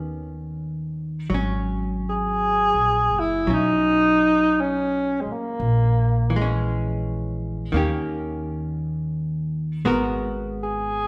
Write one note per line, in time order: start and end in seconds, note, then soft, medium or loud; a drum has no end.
0.00 1.26 D#2 medium
0.00 1.29 D#3 soft
0.00 1.31 B3 soft
0.00 1.32 C#4 soft
0.00 1.33 G4 soft
1.30 2.70 G#1 medium
1.30 3.46 F#3 soft
1.34 3.49 C#4 soft
2.10 3.21 G#4 medium
2.74 3.08 A#1 soft
3.10 3.43 F#1 medium
3.20 3.55 E4 medium
3.46 5.22 B1 medium
3.46 5.60 F#3 soft
3.50 5.61 C#4 soft
3.50 4.62 D#4 medium
4.61 5.22 C#4 medium
5.21 5.34 G#3 medium
5.26 muted upright bass stroke soft
5.32 6.69 A#3 medium
5.60 7.68 A#1 medium
6.30 7.71 E3 soft
6.36 7.74 G#3 soft
6.42 7.75 C#4 soft
7.72 9.82 D#2 medium
7.72 9.85 D#3 soft
7.72 9.85 A#3 soft
7.72 9.86 C#4 soft
7.77 9.87 G4 soft
9.85 11.07 G#1 medium
9.85 11.07 G#3 soft
9.85 11.07 B3 medium
9.85 11.07 F#4 soft
9.85 11.07 A#4 soft
10.64 11.07 G#4 loud